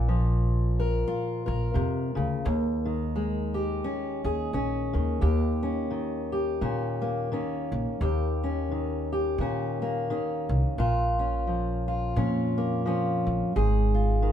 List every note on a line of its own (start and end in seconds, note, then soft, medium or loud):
0.00 1.02 A#1 medium
0.00 1.74 A#2 medium
0.00 1.10 C#4 medium
0.08 2.42 F3 medium
0.80 1.46 A#4 soft
1.08 2.42 F4 medium
1.46 1.75 A#1 medium
1.46 3.19 A#4 medium
1.74 2.14 F2 medium
1.74 2.15 C3 medium
2.15 2.44 D2 medium
2.15 2.45 C#3 medium
2.45 5.20 D#2 medium
2.45 3.80 D#2 medium
2.85 4.92 D#3 medium
3.16 5.24 G#3 soft
3.54 4.24 G4 medium
3.84 4.53 C#4 medium
4.24 4.52 D#2 medium
4.24 5.20 G#4 medium
4.53 4.92 A#1 medium
4.53 5.20 C#4 medium
4.93 5.21 D#2 medium
4.93 5.89 D#3 medium
5.21 8.00 D#2 medium
5.21 6.57 D#2 medium
5.21 6.32 G4 medium
5.63 6.62 C#4 soft
5.91 7.30 D#3 soft
6.32 7.97 G4 soft
6.61 7.31 A#2 medium
6.61 7.68 D#3 medium
6.61 7.32 C#4 medium
7.02 9.81 A#3 soft
7.32 8.70 D#3 medium
7.32 8.04 C#4 medium
7.72 7.86 A#1 medium
8.01 9.36 D#2 medium
8.01 10.79 D#2 medium
8.01 9.11 G4 medium
8.44 9.41 C#4 soft
8.71 10.09 D#3 soft
9.12 10.76 G4 medium
9.38 10.09 A#2 medium
9.38 10.45 D#3 medium
9.38 10.10 C#4 medium
9.82 10.76 A#3 medium
10.10 10.79 D#3 medium
10.10 10.76 C#4 medium
10.49 10.63 C2 medium
10.78 12.13 A#1 medium
10.78 12.17 A#2 medium
10.78 11.87 F4 medium
11.19 12.16 C#4 soft
11.47 12.84 F3 soft
11.88 13.56 F4 medium
12.16 13.52 F2 medium
12.16 13.23 A#2 medium
12.16 12.86 C#4 medium
12.58 13.52 A#3 soft
12.86 13.52 F3 medium
12.86 13.53 C#4 medium
13.27 13.40 A#1 medium
13.56 14.32 G#1 medium
13.56 14.32 G#2 medium
13.56 14.32 G#4 medium
13.95 14.32 F4 soft
14.22 14.32 D#3 medium